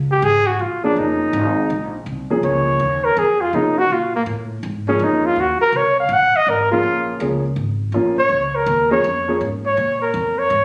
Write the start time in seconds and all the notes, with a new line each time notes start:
Already playing: C#2
0.11 G4
0.22 G#1 G#4
0.47 F#4
0.59 A#1 F4
0.84 F3 A#3 C#4 D4 G#4
0.96 F1 D#4
1.33 G#1
1.70 A#1
2.06 C2
2.30 F3 A#3 C#4 G#4
2.43 C#2 C#5
2.80 D#2
3.05 A#4
3.17 F2 G#4
3.41 F4
3.53 C3 F3 A#3 C#4 D#4 G#4
3.78 F#4
3.90 A#2 F4
4.15 A#3
4.26 A2
4.63 G#2
4.88 F3 A#3 C#4 G#4
4.99 F2
5.04 D#4
5.26 F4
5.36 D#2
5.40 F#4
5.60 A#4, muted upright bass stroke
5.72 C2
5.77 C#5
6.00 F5
6.09 A#1
6.13 F#5
6.33 D#5, muted upright bass stroke
6.47 G#1 A#4
6.71 F3 A#3 C#4 F4 G#4
6.83 A#1
7.20 C#2 F3 A#3 C#4 G#4
7.56 G#1
7.92 A#1 F3 A#3 C#4 F4
8.19 C#5
8.29 C#2
8.55 A#4
8.66 D#2
8.91 F3 A#3 C#4 G#4 C#5
9.04 F2
9.28 F3 A#3 C#4 G#4
9.41 G#2
9.66 C#5
9.77 A#2
10.02 A#4
10.14 F2
10.39 C#5
10.50 G#2